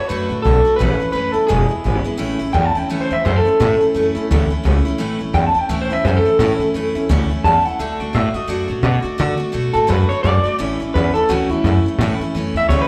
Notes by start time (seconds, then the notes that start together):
0.08 F#2 D3 A3 D4 F#4 B4
0.29 A2 A3 D4 F#4
0.42 B1 D3 A3 D4 A4
0.47 F#4
0.65 A3 D4 F#4, muted upright bass stroke
0.76 A2 A3 B4
0.80 A1 E3 C#4 E4
1.00 A3 C#4 E4, muted upright bass stroke
1.12 F#2 E3 A3 C#4 E4 B4
1.32 E2 A3 C#4 E4 A4
1.47 E1 E2 B2 E3 G#3 B3 E4 G#4
1.68 E3 G#3 B3 E4, muted upright bass stroke
1.84 G#1 E3 G#3 B3 E4
2.04 E3 G#3 B3 E4, muted upright bass stroke
2.17 A1 A2 E3 A3 C#4 E4
2.39 A1 A3 C#4 E4
2.52 E2 E3 A3 C#4 E4 G5
2.65 A5
2.75 A3 C#4 E4 G5, muted upright bass stroke
2.88 D2 A2 E3 A3 C#4 E4 E5
3.01 C5
3.10 E2 A3 C#4 E4 E5
3.25 F#2 E3 A3 C#4 E4 C5
3.36 A4
3.45 A3 C#4 E4, muted upright bass stroke
3.60 A2 E3 A3 C#4 E4
3.81 A3 C#4 E4, muted upright bass stroke
3.94 F#2 E3 A3 C#4 E4
4.15 E2 A3 C#4 E4
4.31 D2 A2 E3 A3 C#4 E4
4.50 A3 C#4 E4, muted upright bass stroke
4.64 C#2 E3 A3 C#4 E4
4.85 A3 C#4 E4, muted upright bass stroke
4.98 A1 A2 E3 A3 C#4 E4
5.19 A1 A3 C#4 E4
5.34 E2 E3 A3 C#4 E4 G5
5.47 A5
5.54 A3 C#4 E4, muted upright bass stroke
5.59 G5
5.69 D2 A2 E3 A3 C#4 E4 E5
5.82 C5
5.89 E2 A3 C#4 E4 E5
6.05 F#2 E3 A3 C#4 E4 C5
6.17 A4
6.25 A3 C#4 E4, muted upright bass stroke
6.39 A2 E3 A3 C#4 E4
6.59 A3 C#4 E4, muted upright bass stroke
6.74 F#2 E3 A3 C#4 E4
6.95 E2 A3 C#4 E4
7.09 D2 A2 E3 A3 C#4 E4
7.29 A3 C#4 E4, muted upright bass stroke
7.44 E2 E3 A3 C#4 E4 A5
7.65 A3 C#4 E4 F#5, muted upright bass stroke
7.79 D2 D3 A3 D4 F#4 E5
8.00 D2 A3 D4 F#4 D5
8.13 A2 D3 A3 D4 F#4 E5
8.34 A3 D4 F#4 D#5, muted upright bass stroke
8.47 F#2 D3 A3 D4 F#4 D5
8.68 A2 A3 D4 F#4 C#5
8.83 B2 D3 A3 D4 F#4 D5
9.02 A3 D4 F#4, muted upright bass stroke
9.18 D3 A3 D4 F#4
9.37 A3 D4 F#4, muted upright bass stroke
9.52 B2 D3 A3 D4 F#4
9.73 A2 A3 D4 F#4 A4
9.87 F#2 D3 A3 D4 F#4 B4
10.09 A3 D4 F#4 C#5, muted upright bass stroke
10.23 F#2 D3 A3 D4 F#4 D5
10.44 A3 D4 F#4, muted upright bass stroke
10.59 A1 A2 E3 A3 C#4 E4
10.80 A1 A3 C#4 E4
10.94 E2 E3 A3 C#4 B4
10.98 E4
11.14 A3 C#4 E4 A4, muted upright bass stroke
11.29 D2 A2 E3 A3 C#4 E4 F#4
11.49 E2 A3 C#4 E4
11.64 F#2 E3 A3 C#4 E4
11.85 A3 C#4 E4, muted upright bass stroke
11.98 A2 E3 A3 C#4
12.03 E4
12.20 A3 C#4 E4, muted upright bass stroke
12.35 F#2 E3 A3 C#4 E4
12.54 E2 A3 C#4 E4 E5
12.69 D2 A2 E3 A3 C#4 E4 C#5
12.81 B4